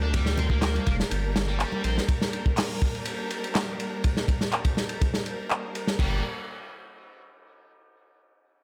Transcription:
Already playing: sub bass D2, string section G3 A#3 D4 A#4
0.02 distorted electric guitar D4
0.14 distorted electric guitar G3, kick, ride, low conga
0.26 snare
0.37 distorted electric guitar C4, ride, muted conga, low conga
0.50 distorted electric guitar A#3, kick
0.62 snare, clap, ride
0.75 ride, high conga
0.86 sub bass F1, distorted electric guitar A#3, kick, ride
1.00 snare
1.11 sub bass G1, ride
1.36 snare, ride
1.49 distorted electric guitar G3
1.60 clap, ride
1.72 high conga
1.84 sub bass A#1, distorted electric guitar C4, ride
1.98 snare
2.08 kick, ride
2.22 snare
2.33 ride
2.46 kick
2.57 snare, clap, open hi-hat
2.81 kick, ride
2.95 ride
3.05 ride
3.30 ride
3.44 ride
3.55 snare, clap, ride
3.80 ride
4.04 kick, ride
4.17 snare
4.28 kick, ride
4.41 snare
4.52 clap, ride
4.65 kick, ride
4.77 snare
4.89 ride
5.01 kick, ride
5.14 snare
5.26 ride
5.50 clap
5.75 ride
5.87 snare
5.99 sub bass G1, string section G3 A#3 D4 A#4, distorted electric guitar G3, kick, crash

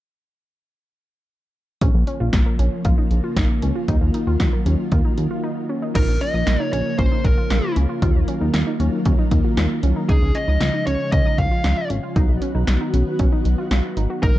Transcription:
1.81 analog synth bass A#1, string machine C#3 F3 A#3 F4, synth pluck C#4, kick, closed hi-hat
1.94 analog synth bass A#1
2.07 synth pluck C#4, closed hi-hat
2.20 analog synth bass A#1, synth pluck F4
2.33 analog synth bass A#1, kick, snare, closed hi-hat
2.46 synth pluck A#3
2.59 analog synth bass A#1, synth pluck C#4, closed hi-hat
2.85 analog synth bass A#1, synth pluck F4, kick, closed hi-hat
2.98 synth pluck D#4
3.11 analog synth bass A#1, closed hi-hat
3.24 synth pluck F4
3.37 analog synth bass A#1, synth pluck D#4, kick, snare, closed hi-hat
3.62 analog synth bass C#2, synth pluck C#4, closed hi-hat
3.75 synth pluck F4
3.88 analog synth bass D#2, string machine D#3 F#3, synth pluck D#4, kick, closed hi-hat
4.01 analog synth bass D#2
4.14 synth pluck D#4, closed hi-hat
4.27 analog synth bass D#2, synth pluck F4
4.40 analog synth bass D#2, kick, snare, closed hi-hat
4.53 synth pluck A#3
4.66 analog synth bass D#2, synth pluck C#4, closed hi-hat
4.92 analog synth bass D#2, synth pluck F4, kick, closed hi-hat
5.05 synth pluck D#4
5.18 analog synth bass D#2, closed hi-hat
5.31 synth pluck F4
5.44 synth pluck D#4
5.69 synth pluck C#4
5.82 synth pluck D#4
5.95 analog synth bass A#1, string machine C#3 F3 A#3 F4, synth pluck D#4, lead electric guitar A#4, kick, closed hi-hat, crash
6.08 analog synth bass A#1
6.21 synth pluck C#4, lead electric guitar D#5, closed hi-hat
6.34 analog synth bass A#1, synth pluck D#4
6.47 analog synth bass A#1, snare, closed hi-hat
6.60 synth pluck D#4
6.73 analog synth bass A#1, synth pluck C#4, lead electric guitar C#5, closed hi-hat
6.99 analog synth bass A#1, synth pluck C#4, lead electric guitar C5, kick, closed hi-hat
7.12 synth pluck D#4
7.24 analog synth bass A#1, lead electric guitar A#4, kick, closed hi-hat
7.38 synth pluck F4
7.50 analog synth bass A#1, synth pluck F4, snare, closed hi-hat
7.76 analog synth bass C#2, synth pluck C#4, closed hi-hat
7.89 synth pluck F4
8.02 analog synth bass D#2, string machine D#3 F#3 A#3, synth pluck F4, kick, closed hi-hat
8.15 analog synth bass D#2
8.28 synth pluck C#4, closed hi-hat
8.41 analog synth bass D#2, synth pluck D#4
8.54 analog synth bass D#2, snare, closed hi-hat
8.67 synth pluck D#4
8.80 analog synth bass D#2, synth pluck C#4, closed hi-hat
9.05 analog synth bass D#2, synth pluck C#4, kick, closed hi-hat
9.19 synth pluck D#4
9.31 analog synth bass D#2, kick, closed hi-hat
9.44 synth pluck F4
9.57 analog synth bass D#2, synth pluck F4, snare, closed hi-hat
9.83 analog synth bass C2, synth pluck C#4, closed hi-hat
9.96 synth pluck D#4
10.09 analog synth bass C#2, string machine C#3 F3 G#3, synth pluck D#4, lead electric guitar G#4, kick, closed hi-hat
10.22 analog synth bass C#2
10.35 synth pluck C#4, lead electric guitar D#5, closed hi-hat
10.48 analog synth bass C#2, synth pluck D#4
10.61 analog synth bass C#2, snare, closed hi-hat
10.74 synth pluck D#4
10.87 analog synth bass C#2, synth pluck C#4, lead electric guitar C#5, closed hi-hat
11.12 analog synth bass C#2, synth pluck C#4, lead electric guitar D#5, kick, closed hi-hat
11.25 synth pluck D#4
11.38 analog synth bass C#2, lead electric guitar F5, kick, closed hi-hat
11.51 synth pluck F4
11.64 analog synth bass C#2, synth pluck F4, snare, closed hi-hat
11.90 analog synth bass G#1, synth pluck C#4, closed hi-hat
12.03 synth pluck F4
12.16 analog synth bass B1, string machine D#3 F#3 B3 F#4, synth pluck D#4, kick, closed hi-hat
12.29 analog synth bass B1
12.42 synth pluck C#4, closed hi-hat
12.55 analog synth bass B1, synth pluck D#4
12.67 analog synth bass B1, snare, closed hi-hat
12.81 synth pluck D#4
12.94 analog synth bass B1, synth pluck C#4, closed hi-hat
13.19 analog synth bass B1, synth pluck C#4, kick, closed hi-hat
13.32 synth pluck D#4
13.45 analog synth bass B1, closed hi-hat
13.58 synth pluck F4
13.71 analog synth bass B1, synth pluck F4, snare, closed hi-hat
13.97 analog synth bass G#1, synth pluck D#4, closed hi-hat
14.10 synth pluck F#4
14.23 analog synth bass A#1, string machine C#3 F3 A#3 F4, synth pluck D#4, lead electric guitar A#4, kick, closed hi-hat
14.36 analog synth bass A#1

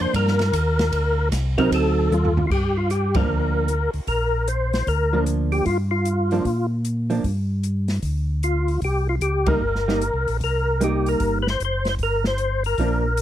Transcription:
Already playing: hollow-body jazz guitar F3 A#3 D4
0.01 tonewheel organ C5
0.14 tonewheel organ G2 A#4, kick, ride
0.27 snare
0.39 snare, ride
0.53 tonewheel organ D#2, kick, hi-hat pedal, ride
0.79 snare, ride
0.92 tonewheel organ D2, kick, ride
1.32 tonewheel organ C2, kick, snare, hi-hat pedal, ride
1.58 hollow-body jazz guitar F#3 C4 D#4, tonewheel organ A#4, kick, ride
1.71 tonewheel organ D2 A4, kick, ride
2.10 tonewheel organ D#2 F4, hi-hat pedal, high tom
2.25 floor tom
2.37 floor tom
2.47 tonewheel organ G2 F4, kick
2.51 tonewheel organ G4, crash
2.77 tonewheel organ F4
2.90 tonewheel organ G4, closed hi-hat
3.14 hollow-body jazz guitar F3 A#3 D4, tonewheel organ A#4, kick, ride
3.28 tonewheel organ D2
3.68 closed hi-hat
3.93 tonewheel organ D2, open hi-hat
4.07 tonewheel organ A#1 A#4, kick, open hi-hat
4.48 tonewheel organ C5, closed hi-hat
4.73 snare, open hi-hat
4.87 tonewheel organ D2 A#4, kick, open hi-hat
5.13 hollow-body jazz guitar F3 A#3 D4
5.26 closed hi-hat
5.52 tonewheel organ G4, open hi-hat
5.65 tonewheel organ G2 F4, kick, open hi-hat
5.91 tonewheel organ F4
6.05 closed hi-hat
6.31 hollow-body jazz guitar F3 A#3 D4, open hi-hat
6.45 tonewheel organ A#2, kick, open hi-hat
6.85 closed hi-hat
7.10 hollow-body jazz guitar F3 A#3 D4, open hi-hat
7.24 tonewheel organ G2, kick, open hi-hat
7.63 closed hi-hat
7.88 snare, open hi-hat
8.02 tonewheel organ D2, kick, open hi-hat
8.43 tonewheel organ F4, closed hi-hat
8.68 open hi-hat
8.82 tonewheel organ C2 G4, kick, open hi-hat
9.09 tonewheel organ F4
9.21 tonewheel organ C#2 G4, closed hi-hat
9.46 hollow-body jazz guitar G3 A#3 D#4, tonewheel organ A#4, kick, ride
9.61 tonewheel organ G1
9.75 snare
9.88 hollow-body jazz guitar G3 A#3 D#4, snare
10.01 closed hi-hat
10.14 tonewheel organ C2
10.28 tonewheel organ A#1, open hi-hat
10.40 tonewheel organ C2 A#4, kick, open hi-hat
10.81 hollow-body jazz guitar G3 A#3 D#4, tonewheel organ G4, closed hi-hat
11.06 tonewheel organ A#4, open hi-hat
11.20 tonewheel organ G1, kick, open hi-hat
11.42 tonewheel organ B4
11.47 tonewheel organ C5, snare
11.60 tonewheel organ F#1, closed hi-hat
11.65 tonewheel organ C5
11.85 snare, open hi-hat
11.89 tonewheel organ C5
11.99 tonewheel organ G1, kick, open hi-hat
12.03 tonewheel organ A#4
12.24 tonewheel organ C5, snare
12.38 closed hi-hat
12.64 tonewheel organ A#4, open hi-hat
12.78 tonewheel organ A#1, hollow-body jazz guitar F3 A#3 D4, kick, open hi-hat
13.17 closed hi-hat

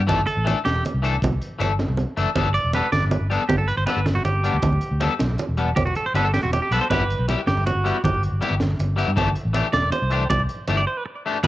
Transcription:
0.07 fingered electric bass G1, clean electric guitar E3 A3 D4 A4, kick, closed hi-hat, muted conga, high conga, low conga
0.19 low conga
0.27 clean electric guitar A4, closed hi-hat
0.37 fingered electric bass A1
0.45 clean electric guitar E3 A3 D4 A4, closed hi-hat, muted conga
0.65 fingered electric bass E1, clean electric guitar G4, snare, closed hi-hat, high conga
0.76 low conga
0.85 closed hi-hat, muted conga
0.94 fingered electric bass C2
1.02 clean electric guitar E3 A3 D4 A4, closed hi-hat
1.22 fingered electric bass C2, kick, closed hi-hat, muted conga, high conga, low conga
1.32 low conga
1.41 closed hi-hat
1.59 fingered electric bass G1, clean electric guitar E3 A3 D4 A4, closed hi-hat, muted conga
1.79 snare, closed hi-hat, high conga
1.88 fingered electric bass C2, low conga
1.97 closed hi-hat, muted conga
2.17 fingered electric bass F#1, clean electric guitar E3 A3 D4 A4, closed hi-hat
2.26 low conga
2.35 fingered electric bass G1, clean electric guitar G3 B3 D4 A4, kick, closed hi-hat, muted conga, high conga
2.45 low conga
2.54 clean electric guitar D5, closed hi-hat
2.64 fingered electric bass E1
2.73 clean electric guitar G3 B3 D4 A4 B4, closed hi-hat, muted conga
2.92 fingered electric bass G1, clean electric guitar D5, snare, closed hi-hat, high conga
3.02 low conga
3.11 closed hi-hat, muted conga
3.21 fingered electric bass G1
3.30 clean electric guitar G3 B3 D4 A4, closed hi-hat
3.40 low conga
3.49 fingered electric bass G1, clean electric guitar G4, kick, closed hi-hat, muted conga, high conga
3.58 clean electric guitar A4, low conga
3.68 clean electric guitar B4, closed hi-hat
3.78 fingered electric bass G1, clean electric guitar C5
3.86 clean electric guitar G3 B3 D4 A4 B4, closed hi-hat, muted conga
3.97 fingered electric bass G1
4.06 muted clean electric guitar stroke, snare, closed hi-hat, high conga
4.15 clean electric guitar F#4, low conga
4.25 fingered electric bass G1, clean electric guitar G4, closed hi-hat, muted conga
4.44 clean electric guitar G3 B3 D4, closed hi-hat
4.53 fingered electric bass D2
4.62 fingered electric bass D2, kick, closed hi-hat, muted conga, high conga
4.73 low conga
4.81 closed hi-hat
4.91 fingered electric bass D2
5.00 clean electric guitar G3 B3 D4 A4, closed hi-hat, muted conga
5.19 fingered electric bass B1, snare, closed hi-hat, high conga
5.30 low conga
5.38 closed hi-hat, muted conga
5.49 fingered electric bass E1
5.57 clean electric guitar G3 B3 D4, closed hi-hat
5.68 low conga
5.76 fingered electric bass E1, clean electric guitar G4, kick, closed hi-hat, muted conga, high conga
5.86 clean electric guitar F#4, low conga
5.95 clean electric guitar A4, closed hi-hat
6.06 clean electric guitar C5
6.14 fingered electric bass G1, clean electric guitar G3 B3 D4 A4 B4, snare, closed hi-hat, muted conga
6.25 clean electric guitar A4
6.33 clean electric guitar G4, snare, closed hi-hat, high conga
6.43 fingered electric bass E1, clean electric guitar F#4, low conga
6.53 clean electric guitar G4, closed hi-hat, muted conga
6.62 clean electric guitar G4
6.71 fingered electric bass B1, clean electric guitar G3 B3 D4 A4 B4, closed hi-hat
6.81 clean electric guitar C5
6.90 fingered electric bass G1, clean electric guitar G3 B3 E4 G4 B4, kick, closed hi-hat, muted conga, high conga
7.00 low conga
7.10 closed hi-hat
7.19 fingered electric bass B1
7.28 clean electric guitar G3 E4 G4, closed hi-hat, muted conga
7.47 fingered electric bass G1, clean electric guitar G4, snare, closed hi-hat, high conga
7.57 low conga
7.66 clean electric guitar F#4, closed hi-hat, muted conga
7.75 fingered electric bass G1
7.84 clean electric guitar G3 B3 E4 G4, closed hi-hat
7.95 low conga
8.04 fingered electric bass G1, clean electric guitar G4, kick, closed hi-hat, muted conga, high conga
8.14 low conga
8.23 closed hi-hat
8.32 fingered electric bass G1
8.41 clean electric guitar G3 B3 E4 G4, closed hi-hat, muted conga
8.51 fingered electric bass G1
8.60 snare, closed hi-hat, high conga
8.71 low conga
8.79 fingered electric bass G1, closed hi-hat, muted conga
8.96 clean electric guitar G3 B3 E4 G4, closed hi-hat
9.08 fingered electric bass G2
9.16 fingered electric bass G1, clean electric guitar E3 A3 D4 G4, kick, closed hi-hat, muted conga, high conga
9.27 low conga
9.35 closed hi-hat
9.45 fingered electric bass A1
9.53 clean electric guitar E3 A3 D4 G4, closed hi-hat, muted conga, low conga
9.73 fingered electric bass E1, clean electric guitar D5, snare, closed hi-hat, high conga
9.83 low conga
9.92 clean electric guitar C5, closed hi-hat, muted conga, low conga
10.02 fingered electric bass C2
10.10 clean electric guitar E3 A3 D4 G4, closed hi-hat, low conga
10.30 fingered electric bass C2, clean electric guitar D5, kick, closed hi-hat, muted conga, high conga
10.40 low conga
10.49 closed hi-hat
10.68 fingered electric bass G1, clean electric guitar E3 A3 D4 G4, closed hi-hat, muted conga
10.77 clean electric guitar D5
10.87 clean electric guitar C5
10.97 clean electric guitar B4
11.06 muted clean electric guitar stroke
11.26 clean electric guitar A3 D4 G4
11.43 fingered electric bass G1, clean electric guitar G3 B3 B4, kick, ride, muted conga, high conga

